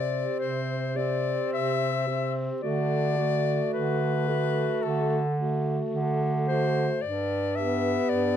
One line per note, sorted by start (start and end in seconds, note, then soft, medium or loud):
0.00 0.25 C3 soft
0.00 0.94 C4 soft
0.00 0.94 G4 soft
0.00 0.39 D5 medium
0.39 1.40 C3 soft
0.39 0.98 C5 medium
0.96 2.05 C4 soft
0.96 2.05 G4 soft
0.96 1.53 D5 medium
1.53 2.49 C3 soft
1.53 2.34 E5 medium
2.08 2.61 C4 soft
2.08 2.62 G4 soft
2.62 3.61 D3 soft
2.62 3.17 A3 soft
2.62 3.16 F#4 soft
2.62 3.69 D5 medium
3.17 4.27 A3 soft
3.17 4.26 F#4 soft
3.73 4.70 D3 soft
3.73 4.84 B4 medium
4.28 5.20 A3 soft
4.28 5.23 F#4 soft
4.82 5.81 D3 soft
4.82 5.38 A4 soft
5.37 6.46 A3 soft
5.37 6.47 F#4 soft
5.93 6.89 D3 medium
6.48 7.01 A3 soft
6.48 7.02 F#4 soft
6.48 7.03 C5 medium
7.02 7.97 G2 medium
7.02 7.57 D5 medium
7.56 8.37 B3 soft
7.56 8.37 G4 soft
7.56 8.11 E5 medium
8.09 8.37 G2 medium
8.09 8.37 D5 medium